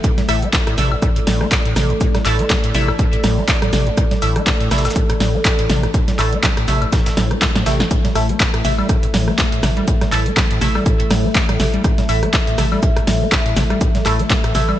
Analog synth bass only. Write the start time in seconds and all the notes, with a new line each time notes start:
0.29 A1
0.78 A1
1.27 A1
1.76 A1
2.25 A1
2.75 A1
3.24 A1
3.73 A1
4.22 A1
4.71 A1
5.20 A1
5.70 A1
6.19 A1
6.68 A1
7.17 A1
7.66 A1
8.15 A1
8.65 A1
9.14 A1
9.63 A1
10.12 A1
10.61 A1
11.11 A1
11.60 A1
12.09 A1
12.58 A1
13.07 A1
13.56 A1
14.06 A1
14.55 A1